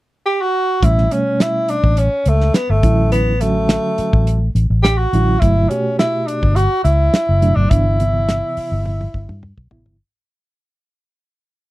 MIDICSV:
0, 0, Header, 1, 6, 480
1, 0, Start_track
1, 0, Tempo, 573066
1, 686, Time_signature, 4, 2, 24, 8
1, 9802, End_track
2, 0, Start_track
2, 0, Title_t, "Tenor saxophone"
2, 0, Program_c, 0, 66
2, 216, Note_on_c, 0, 67, 86
2, 345, Note_on_c, 0, 66, 93
2, 358, Note_off_c, 0, 67, 0
2, 703, Note_on_c, 0, 64, 83
2, 716, Note_off_c, 0, 66, 0
2, 939, Note_on_c, 0, 61, 73
2, 951, Note_off_c, 0, 64, 0
2, 1182, Note_on_c, 0, 64, 79
2, 1195, Note_off_c, 0, 61, 0
2, 1422, Note_on_c, 0, 62, 81
2, 1434, Note_off_c, 0, 64, 0
2, 1656, Note_on_c, 0, 61, 75
2, 1668, Note_off_c, 0, 62, 0
2, 1910, Note_on_c, 0, 57, 74
2, 1923, Note_off_c, 0, 61, 0
2, 2133, Note_on_c, 0, 59, 73
2, 2146, Note_off_c, 0, 57, 0
2, 2261, Note_on_c, 0, 57, 79
2, 2273, Note_off_c, 0, 59, 0
2, 2607, Note_off_c, 0, 57, 0
2, 2612, Note_on_c, 0, 59, 75
2, 2854, Note_on_c, 0, 57, 67
2, 2866, Note_off_c, 0, 59, 0
2, 3816, Note_off_c, 0, 57, 0
2, 4043, Note_on_c, 0, 67, 89
2, 4167, Note_on_c, 0, 66, 90
2, 4179, Note_off_c, 0, 67, 0
2, 4519, Note_on_c, 0, 64, 90
2, 4532, Note_off_c, 0, 66, 0
2, 4764, Note_on_c, 0, 61, 77
2, 4777, Note_off_c, 0, 64, 0
2, 5011, Note_off_c, 0, 61, 0
2, 5015, Note_on_c, 0, 64, 81
2, 5252, Note_on_c, 0, 62, 78
2, 5264, Note_off_c, 0, 64, 0
2, 5492, Note_on_c, 0, 66, 89
2, 5505, Note_off_c, 0, 62, 0
2, 5723, Note_off_c, 0, 66, 0
2, 5728, Note_on_c, 0, 64, 83
2, 6330, Note_on_c, 0, 62, 74
2, 6343, Note_off_c, 0, 64, 0
2, 6446, Note_on_c, 0, 64, 83
2, 6459, Note_off_c, 0, 62, 0
2, 7889, Note_off_c, 0, 64, 0
2, 9802, End_track
3, 0, Start_track
3, 0, Title_t, "Reed electric piano"
3, 0, Program_c, 1, 4
3, 687, Note_on_c, 1, 47, 57
3, 692, Note_on_c, 1, 55, 52
3, 692, Note_on_c, 1, 57, 54
3, 693, Note_on_c, 1, 61, 66
3, 889, Note_off_c, 1, 47, 0
3, 892, Note_off_c, 1, 55, 0
3, 892, Note_off_c, 1, 57, 0
3, 892, Note_off_c, 1, 61, 0
3, 934, Note_on_c, 1, 55, 47
3, 935, Note_on_c, 1, 47, 56
3, 938, Note_on_c, 1, 57, 51
3, 941, Note_on_c, 1, 61, 63
3, 1736, Note_off_c, 1, 55, 0
3, 1737, Note_off_c, 1, 47, 0
3, 1739, Note_off_c, 1, 57, 0
3, 1740, Note_off_c, 1, 61, 0
3, 2372, Note_on_c, 1, 50, 66
3, 2374, Note_on_c, 1, 54, 53
3, 2374, Note_on_c, 1, 61, 55
3, 2380, Note_on_c, 1, 64, 69
3, 2776, Note_off_c, 1, 50, 0
3, 2777, Note_off_c, 1, 54, 0
3, 2778, Note_off_c, 1, 61, 0
3, 2780, Note_off_c, 1, 64, 0
3, 2861, Note_on_c, 1, 50, 57
3, 2863, Note_on_c, 1, 54, 51
3, 2865, Note_on_c, 1, 61, 55
3, 2868, Note_on_c, 1, 66, 59
3, 3662, Note_off_c, 1, 50, 0
3, 3663, Note_off_c, 1, 54, 0
3, 3664, Note_off_c, 1, 61, 0
3, 3666, Note_off_c, 1, 66, 0
3, 4298, Note_on_c, 1, 50, 62
3, 4299, Note_on_c, 1, 54, 55
3, 4305, Note_on_c, 1, 61, 55
3, 4307, Note_on_c, 1, 64, 68
3, 4499, Note_off_c, 1, 50, 0
3, 4500, Note_off_c, 1, 54, 0
3, 4502, Note_off_c, 1, 61, 0
3, 4503, Note_off_c, 1, 64, 0
3, 4541, Note_on_c, 1, 47, 61
3, 4543, Note_on_c, 1, 54, 53
3, 4547, Note_on_c, 1, 57, 60
3, 4548, Note_on_c, 1, 64, 65
3, 4741, Note_off_c, 1, 47, 0
3, 4742, Note_off_c, 1, 54, 0
3, 4744, Note_off_c, 1, 57, 0
3, 4744, Note_off_c, 1, 64, 0
3, 4778, Note_on_c, 1, 47, 56
3, 4779, Note_on_c, 1, 66, 50
3, 4785, Note_on_c, 1, 57, 51
3, 4786, Note_on_c, 1, 67, 62
3, 5581, Note_off_c, 1, 47, 0
3, 5582, Note_off_c, 1, 66, 0
3, 5584, Note_off_c, 1, 57, 0
3, 5585, Note_off_c, 1, 67, 0
3, 6213, Note_on_c, 1, 47, 60
3, 6215, Note_on_c, 1, 54, 59
3, 6216, Note_on_c, 1, 57, 56
3, 6222, Note_on_c, 1, 62, 64
3, 6416, Note_off_c, 1, 47, 0
3, 6417, Note_off_c, 1, 54, 0
3, 6418, Note_off_c, 1, 57, 0
3, 6421, Note_off_c, 1, 62, 0
3, 6456, Note_on_c, 1, 48, 57
3, 6460, Note_on_c, 1, 52, 58
3, 6462, Note_on_c, 1, 59, 58
3, 6464, Note_on_c, 1, 62, 66
3, 6658, Note_off_c, 1, 48, 0
3, 6660, Note_off_c, 1, 52, 0
3, 6661, Note_off_c, 1, 59, 0
3, 6662, Note_off_c, 1, 62, 0
3, 6697, Note_on_c, 1, 48, 60
3, 6697, Note_on_c, 1, 52, 47
3, 6701, Note_on_c, 1, 59, 49
3, 6704, Note_on_c, 1, 64, 61
3, 7498, Note_off_c, 1, 48, 0
3, 7498, Note_off_c, 1, 52, 0
3, 7500, Note_off_c, 1, 59, 0
3, 7502, Note_off_c, 1, 64, 0
3, 8132, Note_on_c, 1, 48, 68
3, 8133, Note_on_c, 1, 52, 68
3, 8135, Note_on_c, 1, 59, 68
3, 8139, Note_on_c, 1, 64, 82
3, 8334, Note_off_c, 1, 48, 0
3, 8334, Note_off_c, 1, 52, 0
3, 8335, Note_off_c, 1, 59, 0
3, 8337, Note_off_c, 1, 64, 0
3, 9802, End_track
4, 0, Start_track
4, 0, Title_t, "Fingered electric bass"
4, 0, Program_c, 2, 33
4, 690, Note_on_c, 2, 33, 91
4, 884, Note_off_c, 2, 33, 0
4, 1538, Note_on_c, 2, 33, 77
4, 1732, Note_off_c, 2, 33, 0
4, 1893, Note_on_c, 2, 37, 71
4, 2087, Note_off_c, 2, 37, 0
4, 2258, Note_on_c, 2, 31, 67
4, 2351, Note_off_c, 2, 31, 0
4, 2372, Note_on_c, 2, 33, 77
4, 3153, Note_off_c, 2, 33, 0
4, 3462, Note_on_c, 2, 33, 75
4, 3750, Note_off_c, 2, 33, 0
4, 3811, Note_on_c, 2, 33, 85
4, 3915, Note_off_c, 2, 33, 0
4, 3937, Note_on_c, 2, 33, 85
4, 4227, Note_off_c, 2, 33, 0
4, 4296, Note_on_c, 2, 33, 72
4, 4491, Note_off_c, 2, 33, 0
4, 4537, Note_on_c, 2, 31, 87
4, 4732, Note_off_c, 2, 31, 0
4, 5382, Note_on_c, 2, 31, 84
4, 5577, Note_off_c, 2, 31, 0
4, 5733, Note_on_c, 2, 37, 79
4, 5929, Note_off_c, 2, 37, 0
4, 6105, Note_on_c, 2, 30, 71
4, 6298, Note_off_c, 2, 30, 0
4, 6338, Note_on_c, 2, 31, 80
4, 6433, Note_off_c, 2, 31, 0
4, 6459, Note_on_c, 2, 31, 94
4, 7041, Note_off_c, 2, 31, 0
4, 7301, Note_on_c, 2, 31, 73
4, 7588, Note_off_c, 2, 31, 0
4, 7659, Note_on_c, 2, 31, 84
4, 7759, Note_off_c, 2, 31, 0
4, 7782, Note_on_c, 2, 43, 83
4, 7975, Note_off_c, 2, 43, 0
4, 8020, Note_on_c, 2, 35, 74
4, 8123, Note_off_c, 2, 35, 0
4, 8131, Note_on_c, 2, 33, 75
4, 8244, Note_off_c, 2, 33, 0
4, 8259, Note_on_c, 2, 31, 77
4, 8361, Note_off_c, 2, 31, 0
4, 9802, End_track
5, 0, Start_track
5, 0, Title_t, "Muted fingered electric bass strokes"
5, 3338, Note_on_c, 9, 29, 29
5, 3421, Note_off_c, 9, 29, 0
5, 7179, Note_on_c, 9, 29, 31
5, 7263, Note_off_c, 9, 29, 0
5, 9802, End_track
6, 0, Start_track
6, 0, Title_t, "Drums"
6, 692, Note_on_c, 9, 36, 84
6, 694, Note_on_c, 9, 42, 70
6, 776, Note_off_c, 9, 36, 0
6, 778, Note_off_c, 9, 42, 0
6, 820, Note_on_c, 9, 38, 27
6, 904, Note_off_c, 9, 38, 0
6, 933, Note_on_c, 9, 42, 59
6, 1016, Note_off_c, 9, 42, 0
6, 1174, Note_on_c, 9, 38, 91
6, 1174, Note_on_c, 9, 42, 74
6, 1258, Note_off_c, 9, 38, 0
6, 1258, Note_off_c, 9, 42, 0
6, 1412, Note_on_c, 9, 42, 58
6, 1495, Note_off_c, 9, 42, 0
6, 1538, Note_on_c, 9, 36, 68
6, 1622, Note_off_c, 9, 36, 0
6, 1649, Note_on_c, 9, 42, 76
6, 1733, Note_off_c, 9, 42, 0
6, 1889, Note_on_c, 9, 42, 56
6, 1973, Note_off_c, 9, 42, 0
6, 2016, Note_on_c, 9, 38, 30
6, 2100, Note_off_c, 9, 38, 0
6, 2130, Note_on_c, 9, 38, 100
6, 2130, Note_on_c, 9, 42, 78
6, 2214, Note_off_c, 9, 38, 0
6, 2214, Note_off_c, 9, 42, 0
6, 2371, Note_on_c, 9, 42, 53
6, 2373, Note_on_c, 9, 36, 85
6, 2455, Note_off_c, 9, 42, 0
6, 2457, Note_off_c, 9, 36, 0
6, 2612, Note_on_c, 9, 42, 70
6, 2696, Note_off_c, 9, 42, 0
6, 2854, Note_on_c, 9, 42, 56
6, 2938, Note_off_c, 9, 42, 0
6, 3091, Note_on_c, 9, 38, 97
6, 3091, Note_on_c, 9, 42, 67
6, 3175, Note_off_c, 9, 38, 0
6, 3175, Note_off_c, 9, 42, 0
6, 3333, Note_on_c, 9, 42, 48
6, 3417, Note_off_c, 9, 42, 0
6, 3462, Note_on_c, 9, 36, 72
6, 3545, Note_off_c, 9, 36, 0
6, 3577, Note_on_c, 9, 42, 69
6, 3661, Note_off_c, 9, 42, 0
6, 3817, Note_on_c, 9, 42, 50
6, 3901, Note_off_c, 9, 42, 0
6, 4059, Note_on_c, 9, 38, 99
6, 4059, Note_on_c, 9, 42, 72
6, 4142, Note_off_c, 9, 38, 0
6, 4142, Note_off_c, 9, 42, 0
6, 4301, Note_on_c, 9, 42, 54
6, 4385, Note_off_c, 9, 42, 0
6, 4538, Note_on_c, 9, 42, 66
6, 4539, Note_on_c, 9, 36, 92
6, 4622, Note_off_c, 9, 42, 0
6, 4623, Note_off_c, 9, 36, 0
6, 4780, Note_on_c, 9, 42, 56
6, 4864, Note_off_c, 9, 42, 0
6, 5020, Note_on_c, 9, 38, 99
6, 5020, Note_on_c, 9, 42, 71
6, 5103, Note_off_c, 9, 38, 0
6, 5103, Note_off_c, 9, 42, 0
6, 5262, Note_on_c, 9, 42, 57
6, 5346, Note_off_c, 9, 42, 0
6, 5384, Note_on_c, 9, 36, 68
6, 5468, Note_off_c, 9, 36, 0
6, 5496, Note_on_c, 9, 42, 78
6, 5580, Note_off_c, 9, 42, 0
6, 5737, Note_on_c, 9, 42, 55
6, 5821, Note_off_c, 9, 42, 0
6, 5978, Note_on_c, 9, 38, 100
6, 5978, Note_on_c, 9, 42, 77
6, 6061, Note_off_c, 9, 38, 0
6, 6061, Note_off_c, 9, 42, 0
6, 6218, Note_on_c, 9, 42, 54
6, 6301, Note_off_c, 9, 42, 0
6, 6457, Note_on_c, 9, 42, 77
6, 6458, Note_on_c, 9, 36, 96
6, 6541, Note_off_c, 9, 42, 0
6, 6542, Note_off_c, 9, 36, 0
6, 6700, Note_on_c, 9, 42, 59
6, 6784, Note_off_c, 9, 42, 0
6, 6940, Note_on_c, 9, 38, 92
6, 6940, Note_on_c, 9, 42, 78
6, 7024, Note_off_c, 9, 38, 0
6, 7024, Note_off_c, 9, 42, 0
6, 7178, Note_on_c, 9, 46, 64
6, 7261, Note_off_c, 9, 46, 0
6, 7417, Note_on_c, 9, 48, 53
6, 7501, Note_off_c, 9, 48, 0
6, 7545, Note_on_c, 9, 48, 46
6, 7629, Note_off_c, 9, 48, 0
6, 7657, Note_on_c, 9, 36, 58
6, 7741, Note_off_c, 9, 36, 0
6, 7782, Note_on_c, 9, 47, 56
6, 7866, Note_off_c, 9, 47, 0
6, 7897, Note_on_c, 9, 45, 69
6, 7981, Note_off_c, 9, 45, 0
6, 8021, Note_on_c, 9, 36, 64
6, 8104, Note_off_c, 9, 36, 0
6, 8133, Note_on_c, 9, 43, 81
6, 8217, Note_off_c, 9, 43, 0
6, 8258, Note_on_c, 9, 43, 68
6, 8342, Note_off_c, 9, 43, 0
6, 9802, End_track
0, 0, End_of_file